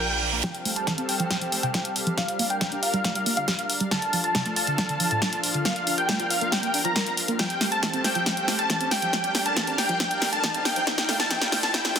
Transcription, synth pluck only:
0.00 0.07 A#4 medium
0.33 0.36 A#3 medium
0.44 0.51 F3 medium
0.65 0.70 A3 medium
0.87 0.94 E3 medium
0.98 1.03 C4 medium
1.20 1.23 F3 medium
1.31 1.38 G3 medium
1.41 1.46 F3 medium
1.52 1.57 A3 medium
1.63 1.70 C3 medium
1.74 1.81 F4 medium
2.07 2.09 F3 medium
2.17 2.25 G3 medium
2.39 2.44 A#3 medium
2.61 2.68 F3 medium
2.72 2.77 D4 medium
2.94 2.96 G3 medium
3.05 3.12 A3 medium
3.15 3.20 G3 medium
3.26 3.31 A#3 medium
3.37 3.44 D3 medium
3.48 3.55 G4 medium
3.81 3.83 G3 medium
3.92 3.99 D3 medium
4.13 4.18 F3 medium
4.35 4.42 C3 medium
4.46 4.51 A3 medium
4.67 4.70 D3 medium
4.78 4.86 E3 medium
4.89 4.94 D3 medium
5.00 5.05 F3 medium
5.11 5.18 A2 medium
5.22 5.29 D4 medium
5.55 5.57 D3 medium
5.65 5.72 A#3 medium
5.87 5.92 D4 medium
6.09 6.16 A3 medium
6.20 6.24 F4 medium
6.41 6.44 A#3 medium
6.52 6.59 C4 medium
6.63 6.68 A#3 medium
6.74 6.79 D4 medium
6.85 6.92 F3 medium
6.96 7.03 A#4 medium
7.28 7.31 A#3 medium
7.39 7.46 F3 medium
7.61 7.66 A3 medium
7.83 7.90 E3 medium
7.94 7.98 C4 medium
8.15 8.18 F3 medium
8.26 8.33 F3 medium
8.48 8.53 A3 medium
8.70 8.77 E3 medium
8.81 8.85 C4 medium
9.02 9.05 F3 medium
9.13 9.20 F3 medium
9.35 9.40 A3 medium
9.57 9.64 E3 medium
9.68 9.72 C4 medium
9.89 9.92 F3 medium
10.00 10.07 F3 medium
10.22 10.27 A3 medium
10.44 10.51 E3 medium
10.54 10.59 C4 medium
10.76 10.79 F3 medium
10.87 10.94 F3 medium
11.09 11.14 A3 medium
11.31 11.38 F3 medium
11.52 11.57 A3 medium
11.74 11.81 F3 medium
11.96 11.99 A3 medium

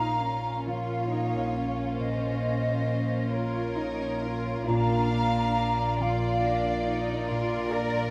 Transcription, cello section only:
0.00 0.23 D#4 soft
0.23 0.67 C#4 soft
0.67 1.11 F4 soft
1.11 1.55 D#4 soft
1.56 3.31 C#4 soft
3.32 3.75 F4 soft
3.76 4.22 D#4 soft
4.23 4.68 F4 medium
4.69 6.01 D4 medium
6.01 6.44 F4 medium
6.44 6.87 D4 medium
6.87 7.29 D#4 medium
7.30 7.73 F4 medium
7.73 8.10 A#4 medium

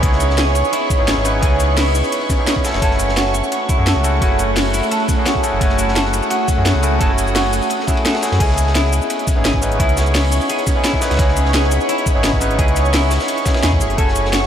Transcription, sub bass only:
0.03 0.63 C#2 loud
0.99 1.15 G#1 medium
1.17 1.41 G#1 medium
1.42 2.02 C#2 loud
2.74 2.81 F#1 loud
2.82 3.42 F#1 loud
3.79 3.94 F#2 medium
3.96 4.20 C#2 medium
4.22 4.82 F#1 loud
5.53 5.60 F#1 loud
5.61 6.21 F#1 loud
6.58 6.73 F#2 medium
6.75 6.99 C#2 medium
7.01 7.61 F#1 loud
8.32 8.39 F#2 loud
8.40 9.00 C#2 loud
9.37 9.52 G#1 medium
9.54 9.78 G#1 medium
9.80 10.40 C#2 loud
11.11 11.18 C#2 loud
11.19 11.79 C#2 loud
12.16 12.31 G#1 medium
12.33 12.57 G#1 medium
12.59 13.19 C#2 loud
13.63 13.82 E2 loud
13.81 13.97 F#1 medium
13.98 14.47 F#1 loud

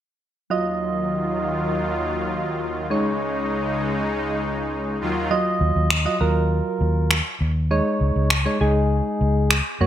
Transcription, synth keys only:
0.50 2.86 F#3 medium
0.50 2.87 F4 medium
0.50 2.87 D#5 medium
2.90 4.97 G#3 medium
2.90 4.97 D#4 medium
2.90 4.97 C#5 medium
5.31 5.89 F#3 medium
5.31 5.89 F4 medium
5.31 5.89 D#5 medium
6.05 6.17 F#3 medium
6.05 6.17 F4 medium
6.05 6.17 D#5 medium
6.20 7.13 F#3 medium
6.20 7.13 F4 medium
6.20 7.13 A#4 medium
7.71 8.29 G#3 medium
7.71 8.29 D#4 medium
7.71 8.29 C#5 medium
8.45 8.57 G#3 medium
8.45 8.57 D#4 medium
8.45 8.58 C#5 medium
8.61 9.53 G#3 medium
8.61 9.53 D#4 medium
8.61 9.54 G#4 medium
9.81 9.87 A#3 medium
9.81 9.87 F#4 medium
9.81 9.87 C#5 medium

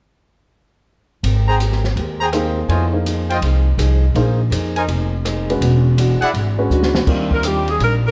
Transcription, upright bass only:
1.23 1.93 G#1 medium
1.96 2.66 D#2 medium
2.68 3.39 F2 medium
3.42 3.76 C2 medium
3.78 4.12 C2 medium
4.15 4.49 A#1 medium
4.51 4.85 F2 medium
4.88 5.58 F1 medium
5.61 6.18 E1 medium
6.21 muted upright bass stroke soft
6.34 6.68 G#1 medium
6.70 7.04 D2 medium
7.07 7.76 D#2 medium
7.79 8.11 A#1 medium

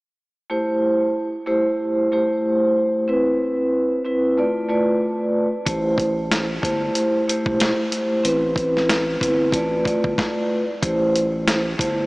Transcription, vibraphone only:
0.50 1.26 A3 medium
0.50 1.26 E4 medium
0.50 1.26 G4 medium
0.50 1.27 C5 loud
1.46 2.07 A3 medium
1.46 2.07 E4 medium
1.46 2.07 G4 medium
1.46 2.08 C5 loud
2.12 3.02 A3 medium
2.12 3.02 E4 medium
2.12 3.03 G4 medium
2.12 3.03 C5 loud
3.08 3.99 C4 medium
3.08 3.99 E4 medium
3.08 3.99 B4 medium
4.05 4.37 C4 medium
4.05 4.37 E4 medium
4.05 4.37 B4 medium
4.38 4.68 A3 medium
4.38 4.68 F4 medium
4.38 4.68 B4 medium
4.38 4.68 D5 medium
4.69 5.45 A3 medium
4.69 5.45 F4 medium
4.69 5.46 B4 medium
4.69 5.46 D5 loud
5.66 6.42 A3 medium
5.66 6.42 E4 medium
5.66 6.42 G4 medium
5.66 6.42 C5 loud
6.62 7.23 A3 medium
6.62 7.23 E4 medium
6.62 7.23 G4 medium
6.62 7.24 C5 loud
7.28 8.18 A3 medium
7.28 8.18 E4 medium
7.28 8.19 G4 medium
7.28 8.19 C5 loud
8.23 9.14 C4 medium
8.23 9.15 E4 medium
8.23 9.15 B4 loud
9.20 9.53 C4 medium
9.20 9.53 E4 medium
9.20 9.53 B4 medium
9.53 9.83 A3 medium
9.53 9.84 F4 medium
9.53 9.84 B4 medium
9.53 9.84 D5 medium
9.84 10.61 A3 medium
9.84 10.61 F4 medium
9.84 10.61 B4 medium
9.84 10.62 D5 loud
10.82 11.58 A3 medium
10.82 11.58 E4 medium
10.82 11.58 G4 medium
10.82 11.59 C5 loud
11.78 12.06 A3 medium
11.78 12.06 E4 medium
11.78 12.06 G4 medium
11.78 12.06 C5 loud

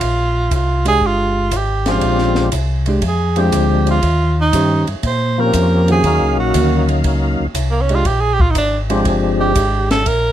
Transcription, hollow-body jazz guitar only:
0.85 1.48 G#3 medium
0.85 1.49 D4 medium
0.85 1.49 G4 medium
2.87 3.01 G#3 medium
2.87 3.02 D4 medium
2.87 3.02 G4 medium
3.38 4.00 G#3 medium
3.38 4.00 D4 medium
3.38 4.00 G4 medium
4.54 4.85 D#3 medium
4.54 4.85 C#4 medium
4.54 4.85 G4 medium
4.54 4.85 C5 medium
5.89 6.03 D#3 medium
5.89 6.03 A#3 medium
5.89 6.03 C#4 medium
5.89 6.03 F#4 medium
6.55 6.86 D#3 medium
6.55 6.86 A#3 medium
6.55 6.86 C#4 medium
6.55 6.87 F#4 medium
7.90 8.04 G#3 medium
7.90 8.05 D4 medium
7.90 8.05 G4 medium
8.90 9.05 G#3 medium
8.90 9.05 D4 medium
8.90 9.05 G4 medium
9.40 10.04 G#3 medium
9.40 10.04 D4 medium
9.40 10.04 G4 medium

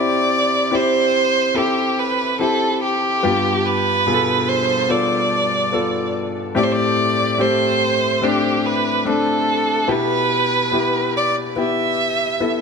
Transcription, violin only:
0.00 0.76 D5 medium
0.75 1.59 C5 medium
1.57 2.00 G4 medium
1.99 2.40 B4 medium
2.41 2.79 A4 medium
2.83 3.67 G4 medium
3.66 4.50 B4 medium
4.49 4.91 C5 medium
4.90 6.15 D5 medium
6.57 6.65 D5 medium
6.64 6.73 C5 medium
6.72 7.43 D5 medium
7.41 8.25 C5 medium
8.24 8.68 G4 medium
8.66 9.07 B4 medium
9.08 9.93 A4 medium
9.92 11.16 B4 medium
11.17 11.35 D5 medium
11.58 12.61 E5 medium

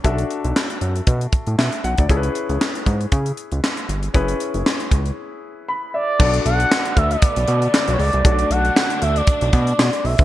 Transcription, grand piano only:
0.04 2.05 D4 medium
0.04 2.05 F#4 medium
0.04 2.06 A4 medium
0.04 1.56 E5 medium
1.58 1.83 E5 medium
1.84 1.98 F#5 medium
1.98 2.23 D5 medium
2.09 4.10 C#4 medium
2.09 4.11 E4 medium
2.09 4.11 G#4 medium
2.09 2.17 A4 medium
2.17 4.14 B4 medium
4.14 6.15 C#4 medium
4.14 6.16 E4 medium
4.14 6.16 G#4 medium
4.14 6.16 B4 medium
5.68 5.92 B5 medium
5.94 6.18 E5 medium
6.19 8.21 D4 medium
6.19 8.21 F#4 medium
6.19 8.21 A4 medium
6.19 8.21 D5 medium
8.24 10.24 D4 medium
8.24 10.24 F#4 medium
8.24 10.24 A4 medium
8.24 8.32 C#5 medium
8.32 10.24 D5 medium

